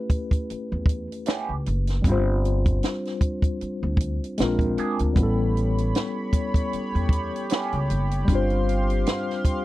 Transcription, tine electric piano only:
Already playing: A3 C#4 E4 G4 B4
2.02 G3 C4
2.07 D4 F4
2.12 C5
4.38 G#3 C4 D4 F4
4.43 A#4
5.13 G3 B3
5.18 C#4 E4
5.23 A4
8.25 G3 C4
8.30 D4 F4
8.35 C5

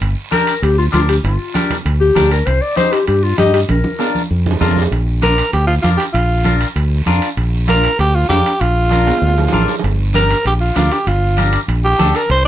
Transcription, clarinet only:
0.33 A#4
0.63 G4
0.78 F4
0.94 F4
1.09 G4
1.24 F4
2.01 G4
2.32 A#4
2.46 C5
2.62 D5
2.77 C5
2.92 G4
3.07 G4
3.23 F4
3.38 G4
3.54 G4
3.69 A#4

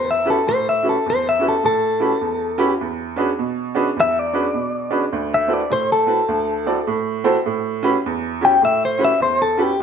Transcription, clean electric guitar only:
0.11 E5
0.30 A4
0.49 C5
0.69 E5
0.89 A4
1.10 C5
1.29 E5
1.48 A4
1.66 A4
4.00 E5
4.19 D5
5.34 E5
5.53 D5
5.73 C5
5.92 A4
8.45 G5
8.65 E5
8.85 C5
9.05 E5
9.22 C5
9.42 A4
9.62 G4

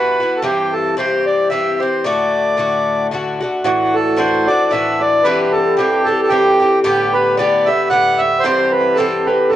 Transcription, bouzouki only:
Already playing: G2 E3 B3 F#4
0.20 E3 B3 F#4
0.43 G2 E3 C4 G4
0.97 G2 E3 C4 G4
1.50 G2 E3 C4 G4
1.80 E3 C4 G4
2.04 A2 D3 A3 F#4
2.57 A2 D3 A3 F#4
3.11 A2 D3 A3 F#4
3.40 D3 A3 F#4
3.64 A2 E3 D4 F#4
4.16 A2 E3 D4 F#4
4.48 E3 D4 F#4
4.71 A2 E3 D4 F#4
5.25 G2 E3 C4 G4
5.77 G2 E3 C4 G4
6.07 E3 C4 G4
6.31 G2 E3 C4 G4
6.60 E3 C4 G4
6.84 A2 D3 B3 G4
7.37 A2 D3 B3 G4
7.67 D3 B3 G4
7.90 A2 D3 B3 G4
8.44 G2 E3 C4 G4
8.97 G2 E3 C4 G4
9.27 E3 C4 G4
9.50 G2 E3

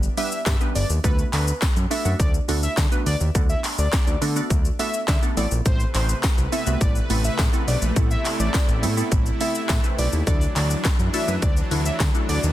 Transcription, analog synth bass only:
0.46 G2
0.75 G1
0.90 D#2
1.04 D2
1.33 D2
1.76 F#2
2.05 F#2
2.20 D2
2.48 D2
2.77 D3
3.06 D2
3.21 D#2
3.35 D2
3.78 D2
4.07 D2
4.21 D3
4.50 D2
5.08 D3
5.37 A1
5.51 A#1
5.66 A1
5.95 A1
6.38 C2
6.67 C2
6.81 A1
7.10 A1
7.39 A2
7.67 B1
7.82 A#1
7.96 A1
8.39 A1
8.68 A1
8.83 A2
9.12 A1
9.69 A2
9.98 B1
10.13 D#2
10.27 D2
10.56 D2
10.99 F#2
11.28 F#2
11.42 D2
11.71 D2
12.00 D3
12.29 D2
12.43 D#2

